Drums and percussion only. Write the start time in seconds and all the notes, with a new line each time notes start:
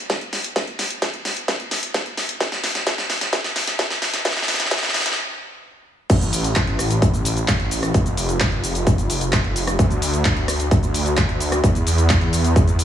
0.10 kick, snare, closed hi-hat
0.21 closed hi-hat
0.33 snare, open hi-hat
0.44 closed hi-hat
0.56 kick, snare, closed hi-hat
0.67 closed hi-hat
0.79 snare, open hi-hat
0.90 closed hi-hat
1.02 kick, snare, closed hi-hat
1.14 closed hi-hat
1.25 snare, open hi-hat
1.37 closed hi-hat
1.48 kick, snare, closed hi-hat
1.60 closed hi-hat
1.71 snare, open hi-hat
1.83 closed hi-hat
1.94 kick, snare, closed hi-hat
2.06 closed hi-hat
2.17 snare, open hi-hat
2.29 closed hi-hat
2.40 kick, snare, closed hi-hat
2.52 snare, closed hi-hat
2.64 snare, open hi-hat
2.75 snare, closed hi-hat
2.87 kick, snare, closed hi-hat
2.98 snare, closed hi-hat
3.10 snare, open hi-hat
3.21 snare, closed hi-hat
3.33 kick, snare, closed hi-hat
3.44 snare, closed hi-hat
3.56 snare, open hi-hat
3.67 snare, closed hi-hat
3.79 kick, snare, closed hi-hat
3.90 snare, closed hi-hat
4.02 snare, open hi-hat
4.14 snare, closed hi-hat
4.25 kick, snare, closed hi-hat
4.31 snare
4.37 snare, closed hi-hat
4.42 snare
4.48 snare, open hi-hat
4.54 snare
4.60 snare, closed hi-hat
4.65 snare
4.71 kick, snare, closed hi-hat
4.77 snare
4.83 snare, closed hi-hat
4.89 snare
4.94 snare, open hi-hat
5.00 snare
5.06 snare, closed hi-hat
5.12 snare
6.10 kick, closed hi-hat, crash, shaker
6.21 closed hi-hat, shaker
6.33 open hi-hat, shaker
6.44 closed hi-hat, shaker
6.56 kick, clap, closed hi-hat, shaker
6.67 closed hi-hat
6.79 cross-stick, open hi-hat, shaker
6.91 closed hi-hat, shaker
7.02 kick, closed hi-hat, shaker
7.14 closed hi-hat, shaker
7.25 open hi-hat, shaker
7.37 closed hi-hat, shaker
7.48 kick, clap, closed hi-hat, shaker
7.60 closed hi-hat
7.71 open hi-hat, shaker
7.83 cross-stick, closed hi-hat, shaker
7.94 kick, closed hi-hat, shaker
8.06 closed hi-hat, shaker
8.17 open hi-hat, shaker
8.29 closed hi-hat, shaker
8.40 kick, clap, closed hi-hat, shaker
8.52 closed hi-hat
8.64 open hi-hat, shaker
8.75 closed hi-hat, shaker
8.87 kick, closed hi-hat, shaker
8.98 closed hi-hat, shaker
9.10 open hi-hat, shaker
9.21 closed hi-hat, shaker
9.32 kick, clap, closed hi-hat, shaker
9.44 closed hi-hat
9.56 open hi-hat, shaker
9.67 cross-stick, closed hi-hat, shaker
9.79 kick, closed hi-hat, shaker
9.90 closed hi-hat, shaker
10.02 open hi-hat, shaker
10.14 closed hi-hat, shaker
10.25 kick, clap, closed hi-hat, shaker
10.37 closed hi-hat
10.48 cross-stick, open hi-hat, shaker
10.60 closed hi-hat, shaker
10.71 kick, closed hi-hat, shaker
10.83 closed hi-hat, shaker
10.94 open hi-hat, shaker
11.06 closed hi-hat, shaker
11.17 kick, clap, closed hi-hat, shaker
11.29 closed hi-hat
11.40 open hi-hat, shaker
11.52 cross-stick, closed hi-hat, shaker
11.64 kick, closed hi-hat, shaker
11.75 closed hi-hat, shaker
11.87 open hi-hat, shaker
11.98 closed hi-hat, shaker
12.09 kick, clap, closed hi-hat, shaker
12.21 closed hi-hat
12.33 open hi-hat, shaker
12.44 closed hi-hat, shaker
12.56 kick, closed hi-hat, shaker
12.67 closed hi-hat, shaker
12.79 open hi-hat, shaker